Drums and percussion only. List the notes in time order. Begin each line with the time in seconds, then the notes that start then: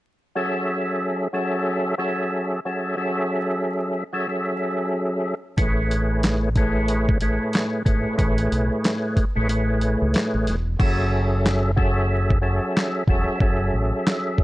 5.58 kick, closed hi-hat
5.91 closed hi-hat
6.23 snare, clap, closed hi-hat
6.56 kick, closed hi-hat
6.88 closed hi-hat
7.09 kick
7.21 closed hi-hat
7.53 snare, clap, closed hi-hat
7.86 kick, closed hi-hat
8.19 kick, closed hi-hat
8.38 closed hi-hat
8.52 closed hi-hat
8.84 snare, clap, closed hi-hat
9.17 kick, closed hi-hat
9.49 closed hi-hat
9.81 closed hi-hat
10.14 snare, clap, closed hi-hat
10.47 snare, closed hi-hat
10.80 kick, crash
11.46 snare, clap
11.77 kick
12.30 kick
12.77 snare, clap
13.08 kick
13.40 kick
14.07 snare, clap
14.38 kick